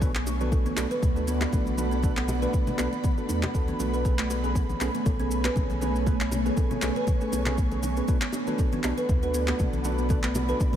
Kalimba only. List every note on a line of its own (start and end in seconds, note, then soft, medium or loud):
0.02 0.14 B3 medium
0.27 0.39 D4 medium
0.41 0.52 B3 medium
0.52 0.59 A4 medium
0.66 0.77 B3 loud
0.91 1.01 B4 medium
1.16 1.22 A3 medium
1.27 1.40 B3 loud
1.53 1.65 B3 medium
1.78 1.90 D4 medium
1.91 2.03 B3 medium
2.03 2.11 A4 medium
2.17 2.28 B3 loud
2.42 2.53 B4 medium
2.67 2.74 A3 medium
2.79 2.91 B3 loud
3.04 3.17 B3 medium
3.29 3.42 D4 medium
3.43 3.54 B3 medium
3.55 3.62 A4 medium
3.68 3.79 B3 loud
3.94 4.04 B4 medium
4.19 4.25 A3 medium
4.30 4.43 B3 loud
4.55 4.68 B3 medium
4.81 4.93 C#4 medium
4.94 5.05 B3 medium
5.06 5.13 A4 medium
5.20 5.31 B3 loud
5.45 5.55 B4 medium
5.70 5.76 A3 medium
5.81 5.94 B3 loud
6.07 6.19 B3 medium
6.32 6.44 C#4 medium
6.46 6.57 B3 medium
6.57 6.65 A4 medium
6.71 6.82 B3 loud
6.96 7.07 B4 medium
7.21 7.28 A3 medium
7.33 7.45 B3 loud
7.58 7.70 B3 medium
7.83 7.96 C#4 medium
7.97 8.07 B3 medium
8.09 8.21 B3 medium
8.34 8.46 D4 medium
8.47 8.58 B3 medium
8.59 8.66 A4 medium
8.73 8.84 B3 loud
8.98 9.08 B4 medium
9.23 9.33 B4 medium
9.34 9.47 B3 loud
9.60 9.72 B3 medium
9.85 9.97 D4 medium
9.99 10.10 B3 medium
10.10 10.17 A4 medium
10.24 10.35 B3 loud
10.49 10.59 B4 medium